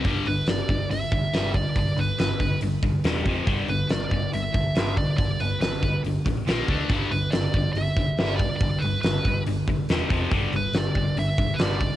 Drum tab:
HH |oooooooo|oooooooo|oooooooo|oooooooo|
SD |--o---o-|--o---o-|--o---o-|--o---o-|
BD |o--o-o-o|o--o-o-o|o--o-o-o|o--o-o-o|

HH |oooooooo|oooooooo|oooooooo|
SD |--o---o-|--o---o-|--o---o-|
BD |o--o-o-o|o--o-o-o|o--o-o-o|